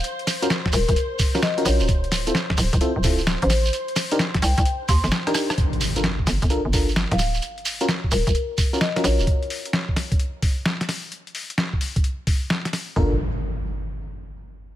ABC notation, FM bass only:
X:1
M:4/4
L:1/16
Q:"Swing 16ths" 1/4=130
K:Gm
V:1 name="FM bass" clef=bass
z6 E,,, E,,, z6 B,,, D,,,- | D,,,4 z2 D,,, D,,, z D,,,4 A,,,3 | z6 C,, C,, z2 E,, G,,, z4 | z6 G,,, G,,, z G,,,4 D,,,3 |
z6 E,,, E,,, z6 B,,, E,,, | z16 | z16 | G,,,2 z12 z2 |]